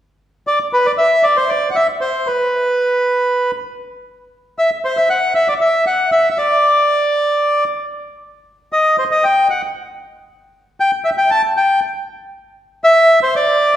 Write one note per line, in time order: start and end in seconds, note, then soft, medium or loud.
0.47 0.59 D5 medium
0.73 0.87 B4 medium
0.86 0.92 D5 medium
0.98 1.25 E5 medium
1.23 1.37 D5 medium
1.37 1.51 C5 medium
1.49 1.70 D5 medium
1.70 1.77 F#5 medium
1.76 1.87 E5 medium
2.01 2.28 C5 medium
2.27 3.51 B4 medium
4.59 4.70 E5 medium
4.85 4.98 C5 medium
4.97 5.09 E5 medium
5.10 5.34 F#5 medium
5.35 5.48 E5 medium
5.48 5.54 D5 medium
5.61 5.85 E5 medium
5.87 6.11 F#5 medium
6.12 6.29 E5 medium
6.30 6.38 E5 soft
6.38 7.64 D5 medium
8.73 8.96 D#5 medium
8.98 9.04 C5 medium
9.11 9.25 D#5 medium
9.24 9.48 G5 medium
9.50 9.62 F#5 medium
10.80 10.91 G5 medium
11.04 11.10 E5 medium
11.18 11.31 G5 medium
11.31 11.42 A5 medium
11.57 11.80 G5 medium
12.84 13.20 E5 medium
13.23 13.35 C5 medium
13.36 13.75 D5 medium